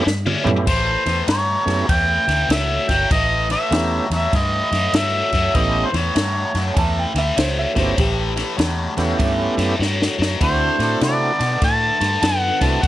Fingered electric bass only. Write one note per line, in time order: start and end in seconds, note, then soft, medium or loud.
0.06 0.34 G2 loud
0.45 0.69 F#2 loud
0.67 0.95 A1 medium
1.06 1.22 E2 medium
1.28 1.56 G2 medium
1.66 1.82 F#2 medium
1.89 2.17 E2 medium
2.28 2.43 D2 medium
2.49 2.77 C#2 medium
2.89 3.05 G1 medium
3.11 3.54 A1 medium
3.71 3.99 E2 medium
4.10 4.26 E2 medium
4.33 4.61 G2 medium
4.72 4.87 F#2 medium
4.93 5.21 G2 medium
5.33 5.48 F#2 medium
5.55 5.82 A1 medium
5.93 6.09 E2 medium
6.16 6.43 G2 medium
6.54 6.70 F#2 medium
6.77 7.04 E2 medium
7.15 7.30 D2 medium
7.38 7.65 C#2 medium
7.76 7.92 G1 medium
7.98 8.41 A1 loud
8.58 8.86 E2 medium
8.97 9.13 E2 medium
9.20 9.47 G2 medium
9.58 9.73 F#2 medium
9.79 10.07 G2 medium
10.19 10.34 F#2 medium
10.41 10.68 D2 medium
10.79 10.95 A2 medium
11.01 11.29 C3 medium
11.40 11.56 B2 medium
11.62 11.90 A2 medium
12.01 12.16 G2 medium
12.22 12.50 F#2 medium
12.61 12.77 C2 medium
12.83 12.87 D2 medium